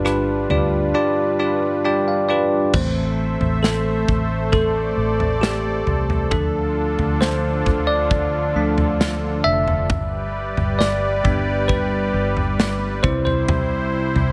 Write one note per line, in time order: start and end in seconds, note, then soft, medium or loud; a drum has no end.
0.00 0.46 G1 medium
0.00 0.46 G2 medium
0.00 0.46 D3 medium
0.00 2.70 G3 medium
0.00 0.05 D4 medium
0.00 2.70 D4 medium
0.00 0.05 F4 medium
0.00 2.70 F4 medium
0.00 0.05 G4 medium
0.00 0.05 B4 medium
0.00 2.70 B4 medium
0.05 0.48 D4 medium
0.05 0.48 F4 medium
0.05 0.48 G4 medium
0.05 0.48 B4 medium
0.05 cross-stick medium
0.50 0.92 D2 medium
0.50 0.93 D4 medium
0.50 0.93 F4 medium
0.50 0.93 G4 medium
0.50 0.93 D5 medium
0.50 floor tom medium
0.94 1.37 D4 loud
0.94 1.37 F4 medium
0.94 1.37 G4 medium
0.94 1.37 D5 loud
1.39 1.82 D4 medium
1.39 1.82 F4 medium
1.39 1.82 G4 medium
1.39 1.82 D5 medium
1.85 2.27 D4 medium
1.85 2.27 F4 medium
1.85 2.27 G4 medium
1.85 2.27 D5 medium
1.85 2.06 G5 medium
2.08 2.28 F5 medium
2.29 2.72 D4 medium
2.29 2.72 F4 medium
2.29 2.72 G4 medium
2.29 2.72 B4 medium
2.29 2.71 D5 medium
2.74 3.37 A1 medium
2.74 6.28 E3 soft
2.74 6.29 A3 medium
2.74 6.29 A3 soft
2.74 6.29 C4 medium
2.74 9.87 A4 medium
2.74 3.59 C5 medium
2.74 6.29 C5 medium
2.74 4.51 E5 medium
2.74 kick loud
2.74 floor tom loud
2.74 crash medium
3.40 4.04 A1 medium
3.40 floor tom medium
3.63 4.51 A4 medium
3.63 snare medium
4.08 4.94 A1 medium
4.08 kick medium
4.08 floor tom medium
4.52 5.38 A4 medium
4.52 6.30 D5 medium
4.52 kick medium
4.52 floor tom medium
4.97 5.83 A1 medium
5.20 floor tom medium
5.41 6.27 G4 medium
5.41 snare loud
5.87 6.29 C2 medium
5.87 floor tom medium
6.10 floor tom medium
6.31 6.95 D2 loud
6.31 9.87 D3 medium
6.31 8.55 F3 soft
6.31 8.55 A3 soft
6.31 9.87 D4 medium
6.31 8.55 D4 medium
6.31 9.87 F4 medium
6.31 7.24 A4 medium
6.31 kick loud
6.31 floor tom loud
6.99 7.62 D2 loud
6.99 floor tom medium
7.21 7.90 C5 medium
7.21 snare loud
7.66 8.52 D2 medium
7.66 kick medium
7.66 floor tom medium
7.87 9.49 D5 medium
8.11 kick medium
8.11 floor tom medium
8.56 9.41 D2 loud
8.56 8.97 F3 soft
8.56 8.97 A3 soft
8.56 8.97 D4 medium
8.78 floor tom medium
9.01 snare loud
9.44 9.90 F1 medium
9.44 10.83 E5 loud
9.68 floor tom medium
9.90 10.53 G1 loud
9.90 14.32 G3 medium
9.90 13.01 G4 medium
9.90 13.00 B4 medium
9.90 13.00 D5 medium
9.90 kick loud
9.90 floor tom loud
10.57 11.21 G1 medium
10.57 floor tom medium
10.79 11.72 D5 medium
10.79 snare medium
11.24 12.10 G1 loud
11.24 12.99 G3 soft
11.24 13.00 B3 soft
11.24 13.00 D4 medium
11.24 kick medium
11.24 floor tom medium
11.68 13.07 B4 medium
11.68 kick medium
11.68 floor tom medium
12.14 13.00 G1 loud
12.37 floor tom medium
12.60 snare loud
13.03 14.12 C2 medium
13.03 14.32 C3 medium
13.03 14.32 G3 medium
13.03 14.32 C4 medium
13.03 14.32 E4 medium
13.03 13.24 C5 medium
13.03 14.32 C5 medium
13.03 kick loud
13.03 floor tom medium
13.25 14.32 C5 medium
13.25 floor tom medium
13.48 floor tom loud
14.16 14.32 C2 medium
14.16 floor tom medium